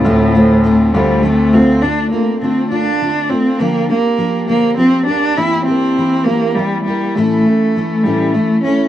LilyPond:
<<
  \new Staff \with { instrumentName = "Twelve-string acoustic guitar" } { \time 6/8 \key d \minor \tempo 4. = 68 <d a c' f'>8 <a c' f'>8 <d a c' f'>8 <d a c' f'>8 <d a c' f'>8 <a c' f'>8 | <d a d' f'>8 <a d' f'>8 <d a d' f'>8 <d a d' f'>8 <d a d' f'>8 <a d' f'>8 | <d f bes d' g'>8 <bes d' g'>8 <f bes d' g'>8 <d f bes d' g'>8 <f bes d' g'>8 <bes d' g'>8 | <e bes e' g'>8 <bes e' g'>8 <e bes e' g'>8 <e bes e' g'>8 <e bes e' g'>8 <bes e' g'>8 |
<a, e a cis' e'>8 <a cis' e'>8 <e a cis' e'>8 <a, e a cis' e'>8 <e a cis' e'>8 <a cis' e'>8 | }
  \new Staff \with { instrumentName = "Cello" } { \time 6/8 \key d \minor a,4. g8 a8 c'8 | d'8 bes8 c'8 d'4 c'8 | bes8 bes4 bes8 c'8 d'8 | e'8 c'4 bes8 g8 g8 |
a4. g8 a8 cis'8 | }
  \new Staff \with { instrumentName = "Grand piano" } { \clef bass \time 6/8 \key d \minor d,4. d,4 d,8 | r2. | r2. | r2. |
r2. | }
>>